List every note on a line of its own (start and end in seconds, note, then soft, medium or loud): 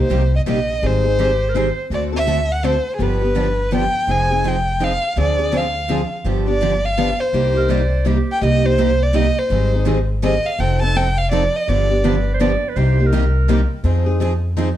0.00 0.31 C5 medium
0.09 0.41 C2 medium
0.09 0.21 C3 medium
0.09 0.21 G3 medium
0.09 0.21 A#3 medium
0.09 0.21 D#4 medium
0.09 0.22 G4 medium
0.36 0.41 D#5 medium
0.46 0.77 A#1 medium
0.46 0.58 C3 medium
0.46 0.58 G3 medium
0.46 0.58 A#3 medium
0.46 0.58 D#4 medium
0.46 0.58 G4 medium
0.46 0.87 D#5 medium
0.82 1.69 G#1 medium
0.82 1.04 D#3 medium
0.82 1.04 G3 medium
0.82 1.04 C4 medium
0.82 1.04 D#4 medium
0.82 1.03 G#4 medium
0.82 1.79 C5 medium
1.04 1.18 C4 soft
1.04 1.18 D#4 soft
1.04 1.18 G#4 soft
1.19 1.30 D#3 medium
1.19 1.30 G3 medium
1.19 1.30 C4 medium
1.19 1.30 D#4 medium
1.19 1.51 G4 medium
1.19 1.30 G#4 medium
1.49 1.57 A#4 medium
1.54 1.66 D#3 medium
1.54 1.66 G3 medium
1.54 1.66 C4 medium
1.54 1.66 D#4 medium
1.54 1.66 G#4 medium
1.54 1.84 C5 medium
1.90 2.77 D2 medium
1.90 2.12 D3 medium
1.90 2.12 A3 medium
1.90 2.12 C4 medium
1.90 2.12 F#4 medium
1.90 2.11 A4 medium
1.90 2.03 D5 medium
2.12 2.26 C4 soft
2.12 2.26 F#4 soft
2.12 2.26 A4 soft
2.17 2.53 E5 medium
2.26 2.38 D3 medium
2.26 2.38 A3 medium
2.26 2.38 C4 medium
2.26 2.38 F#4 medium
2.26 2.38 A4 medium
2.52 2.67 F#5 medium
2.63 2.74 D3 medium
2.63 2.75 A3 medium
2.63 2.75 C4 medium
2.63 2.75 F#4 medium
2.63 2.75 A4 medium
2.63 2.95 C5 medium
2.96 3.86 G1 medium
2.96 3.20 D3 medium
2.96 3.20 F3 medium
2.96 3.20 B3 medium
2.96 3.20 D4 medium
2.96 3.20 G4 medium
2.96 3.04 G#4 medium
3.03 3.73 B4 medium
3.22 3.34 B3 soft
3.22 3.34 D4 soft
3.22 3.35 G4 soft
3.35 3.46 D3 medium
3.35 3.47 F3 medium
3.35 3.47 B3 medium
3.35 3.47 D4 medium
3.35 3.47 G4 medium
3.72 3.83 D3 medium
3.72 3.83 F3 medium
3.72 3.83 B3 medium
3.72 3.83 D4 medium
3.72 3.83 G4 loud
3.72 4.13 G5 medium
4.07 4.94 F1 medium
4.07 4.29 F3 medium
4.07 4.29 C4 medium
4.07 4.29 D#4 medium
4.07 4.29 G#4 medium
4.07 4.50 G#5 medium
4.30 4.43 C4 soft
4.30 4.44 D#4 soft
4.30 4.44 G#4 soft
4.44 4.55 F3 medium
4.44 4.55 C4 medium
4.44 4.56 D#4 medium
4.44 4.56 G#4 medium
4.44 4.85 G5 medium
4.80 4.91 F3 medium
4.80 4.91 C4 medium
4.80 4.91 D#4 medium
4.80 4.91 G#4 medium
4.84 5.18 F5 medium
5.16 6.03 D2 medium
5.16 5.37 D3 medium
5.16 5.38 F3 medium
5.16 5.38 C4 medium
5.16 5.38 D4 medium
5.16 5.38 G#4 medium
5.21 5.59 D5 medium
5.39 5.51 C4 soft
5.39 5.51 D4 soft
5.39 5.51 G#4 medium
5.52 5.63 D3 medium
5.52 5.64 F3 medium
5.52 5.64 C4 medium
5.52 5.64 D4 medium
5.52 5.64 G#4 medium
5.57 6.13 F5 medium
5.89 6.00 D3 medium
5.89 6.00 F3 medium
5.89 6.00 C4 medium
5.89 6.00 D4 medium
5.89 6.01 G#4 medium
6.24 7.11 G1 medium
6.24 6.46 D3 medium
6.24 6.46 F3 medium
6.24 6.46 B3 medium
6.24 6.47 D4 medium
6.24 6.46 G4 medium
6.47 6.61 B3 soft
6.47 6.61 D4 medium
6.47 6.60 G4 medium
6.47 6.87 D5 medium
6.62 6.73 D3 medium
6.62 6.73 F3 medium
6.62 6.73 B3 medium
6.62 6.73 D4 medium
6.62 6.73 G4 medium
6.86 7.21 F5 medium
6.97 7.08 D3 medium
6.97 7.09 F3 medium
6.97 7.09 B3 medium
6.97 7.09 D4 medium
6.97 7.09 G4 medium
7.20 8.06 C5 medium
7.33 8.20 C2 medium
7.33 7.54 C3 medium
7.33 7.55 G3 medium
7.33 7.55 A#3 medium
7.33 7.54 D#4 medium
7.33 7.53 G4 medium
7.54 7.67 A#3 soft
7.54 7.68 D#4 soft
7.54 7.68 G4 soft
7.54 7.72 A#4 medium
7.68 7.80 C3 medium
7.68 7.80 G3 medium
7.68 7.80 A#3 medium
7.68 7.81 D#4 medium
7.68 7.81 G4 medium
7.68 8.08 D5 medium
8.05 8.16 C3 medium
8.05 8.17 G3 medium
8.05 8.17 A#3 medium
8.05 8.17 D#4 medium
8.05 8.17 G4 medium
8.05 8.42 G4 medium
8.32 8.43 G5 medium
8.41 9.28 C2 medium
8.41 8.62 C3 medium
8.41 8.63 G3 medium
8.41 8.63 A#3 medium
8.41 8.63 D#4 medium
8.41 8.63 G4 medium
8.41 8.67 D#5 medium
8.64 8.77 A#3 soft
8.64 8.78 D#4 medium
8.64 8.78 G4 medium
8.64 9.04 C5 medium
8.78 8.89 C3 medium
8.78 8.89 G3 medium
8.78 8.89 A#3 medium
8.78 8.90 D#4 medium
8.78 8.90 G4 medium
9.03 9.17 D5 medium
9.14 9.25 C3 medium
9.14 9.25 G3 medium
9.14 9.25 A#3 medium
9.14 9.25 D#4 loud
9.14 9.26 G4 medium
9.14 9.40 D#5 medium
9.39 9.88 C5 medium
9.50 10.37 G#1 medium
9.50 9.72 D#3 medium
9.50 9.72 G3 medium
9.50 9.72 C4 medium
9.50 9.72 D#4 medium
9.50 9.72 G#4 medium
9.73 9.86 C4 soft
9.73 9.86 D#4 medium
9.73 9.86 G#4 medium
9.86 9.98 D#3 medium
9.86 9.98 G3 medium
9.86 9.98 C4 medium
9.86 9.98 D#4 medium
9.86 9.98 G#4 medium
10.23 10.34 D#3 medium
10.23 10.34 G3 medium
10.23 10.34 C4 medium
10.23 10.34 D#4 medium
10.23 10.34 G#4 medium
10.23 10.48 D#5 medium
10.46 10.61 F5 medium
10.59 11.46 F1 medium
10.59 10.80 F3 medium
10.59 10.80 C4 medium
10.59 10.81 D#4 medium
10.59 10.80 A4 medium
10.59 10.82 G5 medium
10.81 10.95 C4 soft
10.81 10.95 D#4 medium
10.81 10.95 A4 medium
10.81 10.98 A5 medium
10.96 11.07 F3 medium
10.96 11.07 C4 medium
10.96 11.07 D#4 medium
10.96 11.07 A4 medium
10.96 11.20 G5 medium
11.18 11.31 F5 medium
11.31 11.42 F3 medium
11.31 11.42 C4 medium
11.31 11.43 D#4 medium
11.31 11.43 A4 loud
11.31 11.57 D5 medium
11.56 11.70 D#5 medium
11.67 12.55 G1 medium
11.67 11.88 D3 medium
11.67 11.88 F3 medium
11.67 11.89 B3 medium
11.67 11.89 D4 medium
11.67 11.88 G4 medium
11.67 12.26 D5 medium
11.89 12.02 B3 soft
11.89 12.04 D4 medium
11.89 12.03 G4 medium
12.04 12.15 D3 medium
12.04 12.15 F3 medium
12.04 12.15 B3 medium
12.04 12.15 D4 medium
12.04 12.15 G4 medium
12.04 12.31 B4 medium
12.34 12.40 C5 medium
12.40 12.51 D3 medium
12.40 12.51 F3 medium
12.40 12.51 B3 medium
12.40 12.51 D4 medium
12.40 12.52 G4 medium
12.40 12.70 D5 medium
12.69 12.78 B4 medium
12.76 13.63 C2 medium
12.76 12.97 C3 medium
12.76 12.97 G3 medium
12.76 12.97 A#3 medium
12.76 12.98 D#4 medium
12.76 12.98 G4 medium
12.76 13.08 C5 medium
12.99 13.11 A#3 soft
12.99 13.11 D#4 medium
12.99 13.11 G4 medium
13.07 13.78 A#4 medium
13.12 13.23 C3 medium
13.12 13.23 G3 medium
13.12 13.23 A#3 medium
13.12 13.23 D#4 medium
13.12 13.23 G4 medium
13.48 13.59 C3 medium
13.48 13.59 G3 medium
13.48 13.60 A#3 medium
13.48 13.60 D#4 medium
13.48 13.60 G4 loud
13.84 14.71 F2 medium
13.84 14.05 F3 medium
13.84 14.05 C4 medium
13.84 14.05 D#4 medium
13.84 14.05 G#4 medium
14.06 14.19 C4 soft
14.06 14.19 D#4 soft
14.06 14.20 G#4 medium
14.20 14.31 F3 medium
14.20 14.31 C4 medium
14.20 14.31 D#4 medium
14.20 14.32 G#4 medium
14.57 14.68 F3 medium
14.57 14.68 C4 medium
14.57 14.68 D#4 loud
14.57 14.68 G#4 medium